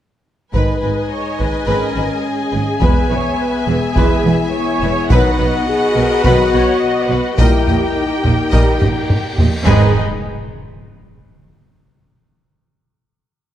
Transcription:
0.53 double bass section G#1, cello section G#2, trombone section D#3 G#3, string section G#3 G#4 D#5, french horn section D#4, trumpet B4, viola section B4, violin section B4 D#5 G#5, taiko
0.82 double bass section G#1, cello section G#2, violin section B4
1.12 viola section C#5
1.39 double bass section G#1, cello section G#2, violin section B4, viola section B4, taiko
1.67 double bass section G#1, cello section G#2, trombone section D#3 G#3, french horn section C#4, viola section A#4, violin section B4, trumpet B4
1.95 double bass section G#1, cello section G#2, violin section B4
2.25 viola section G#4
2.52 double bass section G#1, cello section G#2, violin section B4
2.81 double bass section E1, cello section E2, trombone section E3 G#3, french horn section B3, string section B3 E5, violin section B4 E5, viola section B4, trumpet B4, taiko
3.09 double bass section E1, cello section E2, violin section B4, viola section C#5
3.39 viola section B4
3.66 double bass section E1, cello section E2, viola section G#4, violin section B4
3.96 double bass section E1, cello section E2, trombone section E3 G#3, french horn section E4, trumpet B4, violin section B4, taiko
4.24 double bass section E1, cello section E2, violin section B4
4.53 viola section C#5
4.82 double bass section E1, cello section E2, violin section B4
5.10 double bass section B1, cello section B2, trombone section D#3 F#3, french horn section D#4, string section F#4 B4 D#5, trumpet B4, viola section B4, violin section B4 D#5 F#5, taiko
5.39 double bass section B1, cello section B2, violin section B4
5.67 viola section F#4, french horn section G#4
5.96 double bass section B1, cello section B2, viola section A#4, violin section B4
6.24 double bass section B1, cello section B2, trombone section D#3 F#3, french horn section F#4, viola section B4, violin section B4, trumpet B4, taiko
6.53 double bass section B1, cello section B2, violin section B4, viola section C#5
6.83 viola section D#5
7.10 double bass section B1, cello section B2, viola section B4, violin section B4
7.38 double bass section A#1, cello section A#2, trombone section D#3 G3, string section A#3 G4 A#4, french horn section E4, viola section G4, trumpet A#4, violin section D#5 G5, taiko, cymbal swell
7.67 double bass section A#1, cello section A#2, violin section D#5, taiko low
7.95 french horn section D#4
8.24 double bass section A#1, cello section A#2, violin section D#5, taiko low
8.51 double bass section A#1, cello section A#2, trombone section D#3 G3, trumpet A#4, violin section D#5, taiko
8.79 double bass section A#1, cello section A#2, violin section D#5, taiko low-mid
9.10 taiko low-mid
9.38 double bass section A#1, cello section A#2, violin section D#5, taiko low
9.66 double bass section G#1, cello section G#2, trombone section D#3 G#3, string section D#4 G#4 B4 D#5, viola section G#4, french horn section G#4, trumpet B4, violin section B4 G#5, taiko low, impact

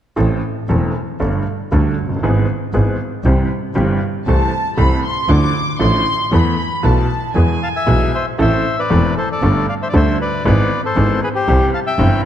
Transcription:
0.16 upright piano A1 A2 E3 A3 C4 A4, double bass A1
0.69 double bass E1, upright piano E1 E2 E3 A3 C4 A4
1.20 upright piano G1 G2 G3 A3 D4 A4, double bass G1
1.71 double bass D2, upright piano D2 D3 G3 A3 D4 A4
1.97 double bass F#1
2.04 upright piano F1
2.09 upright piano F#1
2.16 upright piano G1
2.22 double bass G#1, upright piano G#1 G#2 E3 G#3 B3 G#4
2.74 double bass G#1, upright piano G#1 G#2 E3 G#3 B3 G#4
3.24 double bass C2, upright piano C2 C3 E3 G3 C4 G4
3.75 double bass G1, upright piano G1 G2 E3 G3 C4 G4
4.26 double bass C2, upright piano C2 C3 E3 A3 C4 A4, violin section A5
4.77 upright piano C2 C3 E3 A3 C4 A4, double bass C2, violin section B5
5.03 violin section C6
5.28 double bass D2, upright piano D2 D3 F3 D4 E4 A4, violin section D6
5.79 upright piano A1 A2 F3 D4 E4 A4, double bass A1, violin section C6
6.31 double bass E2, upright piano E2 E3 A3 B3 A4, violin section B5
6.83 upright piano B1 B2 E3 A3 B3 A4, double bass B1, violin section A5
7.34 double bass E2, upright piano E2 E3 G#3 B3 G#4, violin section G#5
7.63 bandoneon F5 A5
7.76 bandoneon E5 G#5
7.86 double bass B1, upright piano B1 B2 E3 G#3 B3 G#4
8.15 bandoneon C5 E5
8.38 upright piano A1 A2 E3 A3 C4 A4, double bass A1, bandoneon C5 E5
8.79 bandoneon B4 D5
8.90 upright piano E1 E2 E3 A3 C4 A4, double bass E1
9.17 bandoneon A4 C5
9.32 bandoneon A4 D5
9.42 double bass G1, upright piano G1 G2 G3 A3 D4 A4
9.69 bandoneon D5 F5
9.82 bandoneon C5 E5
9.89 bandoneon D5
9.93 double bass D2, upright piano D2 D3 G3 A3 D4 A4, bandoneon C5 E5
10.21 bandoneon B4 D5
10.45 double bass G#1, upright piano G#1 G#2 E3 G#3 B3 G#4, bandoneon B4 D5
10.85 bandoneon A4 C5
10.96 double bass G#1, upright piano G#1 G#2 E3 G#3 B3 G#4
11.24 bandoneon G#4 B4
11.35 bandoneon G4 C5
11.48 double bass C2, upright piano C2 C3 E3 G3 C4 G4
11.74 bandoneon F5 A5
11.86 bandoneon E5 G5
11.98 double bass G1, upright piano G1 G2 E3 G3 C4 G4

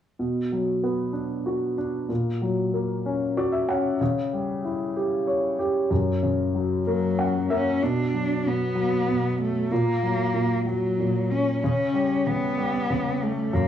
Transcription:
0.19 grand piano B2
0.52 grand piano F#3
0.84 grand piano B3
1.13 grand piano D4
1.46 grand piano F#4
1.78 grand piano D4
2.09 grand piano A#2
2.41 grand piano F#3
2.73 grand piano A#3
3.06 grand piano C#4
3.37 grand piano F#4 D5
3.52 grand piano E5
3.69 grand piano C#4 F#5
4.01 grand piano C#3
4.33 grand piano G3
4.65 grand piano E4
4.96 grand piano G4
5.27 grand piano C#5
5.59 grand piano G4
5.91 grand piano F#2
6.23 grand piano C#3
6.55 grand piano F#3
6.87 cello F#3, grand piano A#3
7.19 grand piano C#4 F#5
7.50 grand piano A#3 E5, cello C#4
7.82 grand piano B2, cello D4
8.14 grand piano F#3
8.45 grand piano B2, cello B3
8.75 grand piano F#3
9.08 grand piano B2
9.42 cello A3
9.71 grand piano A#2, cello A#3
10.03 grand piano F#3
10.34 grand piano A#2
10.66 grand piano F#3, cello F#3
10.99 grand piano A#2
11.31 cello C#4
11.63 grand piano C#3, cello C#4
11.94 grand piano G3
12.27 grand piano C#3, cello B3
12.58 grand piano G3
12.90 grand piano C#3
13.23 cello A3
13.53 grand piano F#2, cello A#3

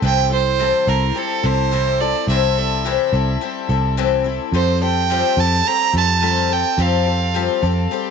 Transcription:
0.02 picked electric bass C2, twelve-string acoustic guitar C3 E3 G3 C4 E4 A4, fiddle G5
0.30 twelve-string acoustic guitar G3 C4 E4 A4, fiddle C5
0.59 twelve-string acoustic guitar C3 E3 G3 C4 E4 A4
0.87 picked electric bass C2, twelve-string acoustic guitar G3 C4 E4 A4, fiddle A#4
1.15 twelve-string acoustic guitar G3 C4 E4 A4, fiddle A4
1.43 picked electric bass C2, twelve-string acoustic guitar G3 C4 E4 A4, fiddle C5
1.72 twelve-string acoustic guitar C3 E3 G3 C4 E4 A4
2.00 twelve-string acoustic guitar G3 C4 E4 A4, fiddle D5
2.27 picked electric bass C2, twelve-string acoustic guitar C3 E3 G3 C4 E4 A4, fiddle E5
2.57 twelve-string acoustic guitar G3 C4 E4 A4
2.84 twelve-string acoustic guitar C3 E3 G3 C4 E4 A4
3.13 picked electric bass C2, twelve-string acoustic guitar G3 C4 E4 A4
3.41 twelve-string acoustic guitar G3 C4 E4 A4
3.69 picked electric bass C2, twelve-string acoustic guitar G3 C4 E4 A4
3.97 twelve-string acoustic guitar C3 E3 G3 C4 E4 A4
4.24 twelve-string acoustic guitar G3 C4 E4 A4
4.52 picked electric bass F2, twelve-string acoustic guitar F3 G3 C4 G4 A4, fiddle C5
4.82 twelve-string acoustic guitar C4 G4 A4, fiddle G5
5.10 twelve-string acoustic guitar F3 G3 C4 G4 A4
5.37 picked electric bass F2, twelve-string acoustic guitar C4 G4 A4, fiddle A5
5.65 twelve-string acoustic guitar G3 C4 G4 A4, fiddle A#5
5.94 picked electric bass F2, twelve-string acoustic guitar C4 G4 A4, fiddle A5
6.21 twelve-string acoustic guitar F3 G3 C4 G4 A4
6.50 twelve-string acoustic guitar C4 G4 A4, fiddle G5
6.78 picked electric bass F2, twelve-string acoustic guitar F3 G3 C4 G4 A4, fiddle F5
7.06 twelve-string acoustic guitar C4 G4 A4
7.34 twelve-string acoustic guitar F3 G3 C4 G4 A4
7.63 picked electric bass F2, twelve-string acoustic guitar C4 G4 A4
7.91 twelve-string acoustic guitar G3 C4 G4 A4

